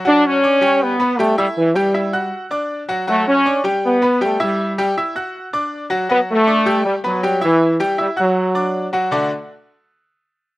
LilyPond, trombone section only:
\new Staff \with { instrumentName = "Trombone section" } { \time 4/4 \key d \major \tempo 4 = 159 d'8 cis'4. b4 a8 g8 | e8 g4. r2 | a8 cis'4 r8 b4 a8 g8~ | g4 r2. |
b8 a4. g8 fis4 e8~ | e8 r8 g8 fis2 r8 | r1 | }